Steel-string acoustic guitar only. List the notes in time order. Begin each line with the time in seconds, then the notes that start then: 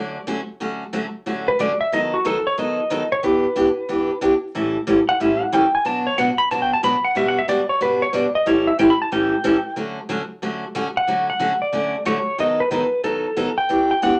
Already playing: D3 F#3 A3 C#4 F#4
0.27 D3 F#3 A3 C#4 F#4
0.60 D3 F#3 A3 C#4 F#4
0.93 D3 F#3 A3 C#4 F#4
1.26 D3 F#3 A3 C#4 F#4
1.59 D3 F#3 A3 C#4 F#4
1.92 D#3 F#3 B3 D#4 A4
2.25 D#3 F#3 B3 D#4 A4
2.58 D#3 F#3 B3 D#4 A4
2.90 D#3 F#3 B3 D#4 A4
3.23 E3 B3 D4 G4
3.56 E3 B3 D4 G4
3.89 E3 B3 D4 G4
4.21 E3 B3 D4 G4
4.55 A2 E3 G3 C#4 E4 A4
4.87 A2 E3 G3 C#4 E4 A4
5.20 A2 E3 G3 C#4 E4 A4
5.52 A2 E3 G3 C#4 E4 A4
5.85 B2 F#3 B3 D4 F#4
6.18 B2 F#3 B3 D4 F#4
6.51 B2 F#3 B3 D4 F#4
6.83 B2 F#3 B3 D4 F#4
7.15 B2 G3 B3 D4 F#4
7.48 B2 G3 B3 D4 F#4
7.81 B2 G3 B3 D4 F#4
8.13 B2 G3 B3 D4 F#4
8.46 A2 E3 G3 C#4 E4 A4
8.79 A2 E3 G3 C#4 E4 A4
9.12 A2 E3 G3 C#4 E4 A4
9.44 A2 E3 G3 C#4 E4 A4
9.76 D3 F#3 A3 C#4 F#4
10.09 D3 F#3 A3 C#4 F#4
10.42 D3 F#3 A3 C#4 F#4
10.75 D3 F#3 A3 C#4 F#4
11.07 D3 F#3 A3 C#4 F#4
11.39 D3 F#3 A3 C#4 F#4
11.73 D3 F#3 A3 C#4 F#4
12.05 D3 F#3 A3 C#4 F#4
12.38 D#3 F#3 B3 D#4 A4
12.71 D#3 F#3 B3 D#4 A4
13.04 D#3 F#3 B3 D#4 A4
13.37 D#3 F#3 B3 D#4 A4
13.69 E3 B3 D4 G4
14.02 E3 B3 D4 G4